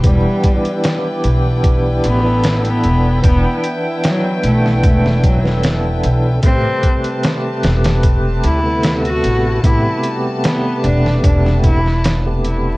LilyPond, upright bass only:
\new Staff \with { instrumentName = "Upright bass" } { \clef bass \time 4/4 \key e \minor \tempo 4 = 75 e,,8 r4 b,,4 a,,4 e,,8 | e,,8 r4 b,,8 e,,4. b,,8 | a,,8 r4 e,,4 d,4 a,,8 | a,,8 r4 e,,8 e,,2 | }